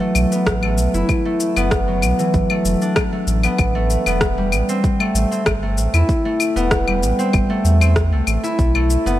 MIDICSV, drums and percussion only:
0, 0, Header, 1, 2, 480
1, 0, Start_track
1, 0, Tempo, 625000
1, 836, Time_signature, 4, 2, 24, 8
1, 7062, End_track
2, 0, Start_track
2, 0, Title_t, "Drums"
2, 115, Note_on_c, 9, 75, 77
2, 118, Note_on_c, 9, 82, 79
2, 192, Note_off_c, 9, 75, 0
2, 195, Note_off_c, 9, 82, 0
2, 246, Note_on_c, 9, 82, 48
2, 323, Note_off_c, 9, 82, 0
2, 357, Note_on_c, 9, 36, 107
2, 358, Note_on_c, 9, 37, 111
2, 361, Note_on_c, 9, 82, 38
2, 434, Note_off_c, 9, 36, 0
2, 435, Note_off_c, 9, 37, 0
2, 438, Note_off_c, 9, 82, 0
2, 481, Note_on_c, 9, 75, 80
2, 558, Note_off_c, 9, 75, 0
2, 597, Note_on_c, 9, 82, 80
2, 674, Note_off_c, 9, 82, 0
2, 724, Note_on_c, 9, 82, 47
2, 801, Note_off_c, 9, 82, 0
2, 836, Note_on_c, 9, 75, 71
2, 837, Note_on_c, 9, 36, 101
2, 838, Note_on_c, 9, 82, 33
2, 913, Note_off_c, 9, 75, 0
2, 914, Note_off_c, 9, 36, 0
2, 915, Note_off_c, 9, 82, 0
2, 1077, Note_on_c, 9, 82, 74
2, 1153, Note_off_c, 9, 82, 0
2, 1202, Note_on_c, 9, 75, 72
2, 1204, Note_on_c, 9, 82, 46
2, 1278, Note_off_c, 9, 75, 0
2, 1281, Note_off_c, 9, 82, 0
2, 1315, Note_on_c, 9, 37, 104
2, 1317, Note_on_c, 9, 36, 116
2, 1318, Note_on_c, 9, 82, 36
2, 1392, Note_off_c, 9, 37, 0
2, 1394, Note_off_c, 9, 36, 0
2, 1395, Note_off_c, 9, 82, 0
2, 1554, Note_on_c, 9, 75, 74
2, 1557, Note_on_c, 9, 82, 83
2, 1631, Note_off_c, 9, 75, 0
2, 1634, Note_off_c, 9, 82, 0
2, 1684, Note_on_c, 9, 82, 44
2, 1760, Note_off_c, 9, 82, 0
2, 1795, Note_on_c, 9, 82, 32
2, 1797, Note_on_c, 9, 36, 111
2, 1872, Note_off_c, 9, 82, 0
2, 1874, Note_off_c, 9, 36, 0
2, 1919, Note_on_c, 9, 75, 75
2, 1996, Note_off_c, 9, 75, 0
2, 2037, Note_on_c, 9, 82, 82
2, 2114, Note_off_c, 9, 82, 0
2, 2163, Note_on_c, 9, 82, 47
2, 2240, Note_off_c, 9, 82, 0
2, 2273, Note_on_c, 9, 37, 99
2, 2273, Note_on_c, 9, 75, 78
2, 2276, Note_on_c, 9, 82, 34
2, 2277, Note_on_c, 9, 36, 104
2, 2350, Note_off_c, 9, 37, 0
2, 2350, Note_off_c, 9, 75, 0
2, 2352, Note_off_c, 9, 82, 0
2, 2353, Note_off_c, 9, 36, 0
2, 2515, Note_on_c, 9, 82, 74
2, 2592, Note_off_c, 9, 82, 0
2, 2638, Note_on_c, 9, 75, 75
2, 2640, Note_on_c, 9, 82, 43
2, 2714, Note_off_c, 9, 75, 0
2, 2717, Note_off_c, 9, 82, 0
2, 2753, Note_on_c, 9, 75, 79
2, 2756, Note_on_c, 9, 36, 105
2, 2756, Note_on_c, 9, 82, 35
2, 2830, Note_off_c, 9, 75, 0
2, 2832, Note_off_c, 9, 82, 0
2, 2833, Note_off_c, 9, 36, 0
2, 2996, Note_on_c, 9, 82, 76
2, 3073, Note_off_c, 9, 82, 0
2, 3120, Note_on_c, 9, 75, 73
2, 3123, Note_on_c, 9, 82, 45
2, 3197, Note_off_c, 9, 75, 0
2, 3200, Note_off_c, 9, 82, 0
2, 3232, Note_on_c, 9, 37, 105
2, 3235, Note_on_c, 9, 82, 35
2, 3236, Note_on_c, 9, 36, 104
2, 3309, Note_off_c, 9, 37, 0
2, 3311, Note_off_c, 9, 82, 0
2, 3313, Note_off_c, 9, 36, 0
2, 3473, Note_on_c, 9, 75, 79
2, 3475, Note_on_c, 9, 82, 79
2, 3550, Note_off_c, 9, 75, 0
2, 3552, Note_off_c, 9, 82, 0
2, 3602, Note_on_c, 9, 82, 44
2, 3679, Note_off_c, 9, 82, 0
2, 3716, Note_on_c, 9, 36, 108
2, 3718, Note_on_c, 9, 82, 33
2, 3793, Note_off_c, 9, 36, 0
2, 3794, Note_off_c, 9, 82, 0
2, 3842, Note_on_c, 9, 75, 81
2, 3919, Note_off_c, 9, 75, 0
2, 3958, Note_on_c, 9, 82, 84
2, 4035, Note_off_c, 9, 82, 0
2, 4086, Note_on_c, 9, 82, 45
2, 4163, Note_off_c, 9, 82, 0
2, 4194, Note_on_c, 9, 37, 104
2, 4194, Note_on_c, 9, 75, 79
2, 4197, Note_on_c, 9, 36, 99
2, 4197, Note_on_c, 9, 82, 35
2, 4271, Note_off_c, 9, 37, 0
2, 4271, Note_off_c, 9, 75, 0
2, 4274, Note_off_c, 9, 36, 0
2, 4274, Note_off_c, 9, 82, 0
2, 4435, Note_on_c, 9, 82, 76
2, 4512, Note_off_c, 9, 82, 0
2, 4561, Note_on_c, 9, 75, 72
2, 4563, Note_on_c, 9, 82, 43
2, 4637, Note_off_c, 9, 75, 0
2, 4640, Note_off_c, 9, 82, 0
2, 4676, Note_on_c, 9, 36, 101
2, 4678, Note_on_c, 9, 82, 33
2, 4753, Note_off_c, 9, 36, 0
2, 4755, Note_off_c, 9, 82, 0
2, 4914, Note_on_c, 9, 75, 73
2, 4917, Note_on_c, 9, 82, 75
2, 4991, Note_off_c, 9, 75, 0
2, 4994, Note_off_c, 9, 82, 0
2, 5044, Note_on_c, 9, 82, 41
2, 5121, Note_off_c, 9, 82, 0
2, 5154, Note_on_c, 9, 37, 99
2, 5156, Note_on_c, 9, 36, 100
2, 5156, Note_on_c, 9, 82, 34
2, 5231, Note_off_c, 9, 37, 0
2, 5233, Note_off_c, 9, 36, 0
2, 5233, Note_off_c, 9, 82, 0
2, 5280, Note_on_c, 9, 75, 83
2, 5357, Note_off_c, 9, 75, 0
2, 5398, Note_on_c, 9, 82, 73
2, 5475, Note_off_c, 9, 82, 0
2, 5524, Note_on_c, 9, 82, 44
2, 5601, Note_off_c, 9, 82, 0
2, 5632, Note_on_c, 9, 75, 74
2, 5635, Note_on_c, 9, 82, 30
2, 5636, Note_on_c, 9, 36, 109
2, 5709, Note_off_c, 9, 75, 0
2, 5712, Note_off_c, 9, 36, 0
2, 5712, Note_off_c, 9, 82, 0
2, 5875, Note_on_c, 9, 82, 78
2, 5952, Note_off_c, 9, 82, 0
2, 6001, Note_on_c, 9, 75, 82
2, 6003, Note_on_c, 9, 82, 45
2, 6078, Note_off_c, 9, 75, 0
2, 6080, Note_off_c, 9, 82, 0
2, 6113, Note_on_c, 9, 37, 96
2, 6115, Note_on_c, 9, 82, 34
2, 6116, Note_on_c, 9, 36, 102
2, 6189, Note_off_c, 9, 37, 0
2, 6192, Note_off_c, 9, 82, 0
2, 6193, Note_off_c, 9, 36, 0
2, 6352, Note_on_c, 9, 75, 77
2, 6354, Note_on_c, 9, 82, 70
2, 6428, Note_off_c, 9, 75, 0
2, 6431, Note_off_c, 9, 82, 0
2, 6483, Note_on_c, 9, 82, 42
2, 6560, Note_off_c, 9, 82, 0
2, 6596, Note_on_c, 9, 36, 101
2, 6597, Note_on_c, 9, 82, 34
2, 6672, Note_off_c, 9, 36, 0
2, 6674, Note_off_c, 9, 82, 0
2, 6720, Note_on_c, 9, 75, 75
2, 6797, Note_off_c, 9, 75, 0
2, 6836, Note_on_c, 9, 82, 72
2, 6912, Note_off_c, 9, 82, 0
2, 6965, Note_on_c, 9, 82, 44
2, 7041, Note_off_c, 9, 82, 0
2, 7062, End_track
0, 0, End_of_file